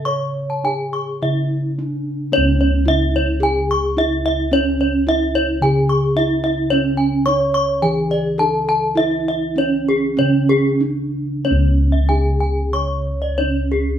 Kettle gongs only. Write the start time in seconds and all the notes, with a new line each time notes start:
Already playing: C#3
0.06 C#5
0.64 D4
1.22 C#3
1.79 D4
2.32 C#4
2.37 C#2
2.88 D4
3.97 D4
4.52 C#4
5.61 C#3
6.16 D4
6.71 C#4
7.27 D4
7.83 E3
8.40 D4
8.98 E4
9.58 D4
10.19 C#3
10.81 D4
11.45 C#4
11.51 C#2
12.09 D4
13.38 D4